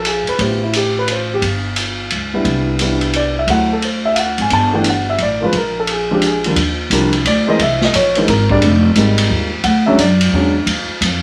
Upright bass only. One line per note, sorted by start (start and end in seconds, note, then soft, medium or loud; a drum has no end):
0.00 0.23 A#1 medium
0.27 muted upright bass stroke soft
0.39 1.38 A1 medium
1.42 2.07 G1 medium
2.12 2.43 C#2 medium
2.45 3.44 C2 medium
3.47 4.34 D2 medium
4.38 4.49 G#1 medium
4.50 5.15 G1 medium
5.18 5.51 A1 medium
5.52 6.52 A#1 medium
6.56 6.89 D#2 medium
6.90 7.24 C2 medium
7.25 7.58 D2 medium
7.59 7.92 C2 medium
7.93 8.26 A#1 medium
8.28 8.61 G#1 medium
8.61 8.95 F1 medium
8.95 9.29 G#1 medium
9.30 9.63 D#2 medium
9.64 9.97 D2 medium
9.98 10.31 F#2 medium
10.32 10.66 E2 medium
10.66 10.87 D#2 medium
10.88 muted upright bass stroke soft
11.01 11.22 F2 medium